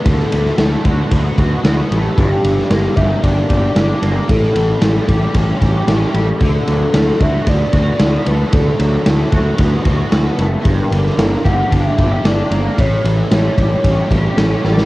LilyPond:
<<
  \new Staff \with { instrumentName = "Soft synth lead" } { \time 4/4 \key d \major \tempo 4 = 113 a'2 r4. g'8~ | g'4. e''8 d''4. bes'8 | a'2 r4. a'8~ | a'4. e''8 d''4. b'8 |
a'2 r4. bes'8~ | bes'4. fis''8 e''4 d''4 | cis''2. a'4 | }
  \new Staff \with { instrumentName = "Distorted electric guitar" } { \time 4/4 \key d \major <d a b fis'>8 a8 a8 fis'8 b8 fis'8 b8 a8 | g,8 d8 bes8 g'8 d'8 g'8 d'8 bes8 | a,8 e8 g8 g'8 cis'8 g'8 cis'8 g8 | d8 fis8 a8 fis'8 b8 fis'8 b8 a8 |
d8 fis8 a8 fis'8 b8 fis'8 b8 a8 | g,8 d8 bes8 g'8 d'8 g'8 d'8 bes8 | a,8 e8 g8 g'8 cis'8 g'8 cis'8 g8 | }
  \new Staff \with { instrumentName = "Fingered electric bass" } { \clef bass \time 4/4 \key d \major d,8 d,8 d,8 d,8 d,8 d,8 d,8 a,,8 | g,,8 g,,8 g,,8 g,,8 g,,8 g,,8 g,,8 g,,8 | a,,8 a,,8 a,,8 a,,8 a,,8 a,,8 a,,8 a,,8 | d,8 d,8 d,8 d,8 d,8 d,8 d,8 d,8 |
d,8 d,8 d,8 d,8 d,8 d,8 d,8 fis,,8 | g,,8 g,,8 g,,8 g,,8 g,,8 g,,8 g,,8 g,,8 | a,,8 a,,8 a,,8 a,,8 a,,8 a,,8 a,,8 a,,8 | }
  \new DrumStaff \with { instrumentName = "Drums" } \drummode { \time 4/4 <bd cymr>16 sn16 cymr16 sn16 <cymr sn>8 <bd cymr>8 <bd cymr>8 <bd cymr>8 <cymr sn>8 cymr8 | <bd cymr>8 cymr16 sn16 <cymr sn>8 <bd cymr>8 <bd cymr>8 <bd cymr>8 <cymr sn>8 cymr8 | <bd cymr>16 sn16 cymr8 <cymr sn>8 <bd cymr>8 <bd cymr>8 <bd cymr>8 <cymr sn>8 cymr8 | <bd cymr>8 cymr8 <cymr sn>8 <bd cymr>8 <bd cymr>8 <bd cymr>8 <cymr sn>8 cymr8 |
<bd cymr>8 cymr8 <cymr sn>8 <bd cymr>8 <bd cymr>8 <bd cymr>8 <cymr sn>8 cymr8 | <bd cymr>8 cymr16 sn16 <cymr sn>8 <bd cymr>8 <bd cymr>8 <bd cymr>8 <cymr sn>8 cymr8 | <bd cymr>8 cymr8 <cymr sn>8 <bd cymr>8 <bd cymr>8 <bd cymr>8 <cymr sn>8 sn16 sn16 | }
>>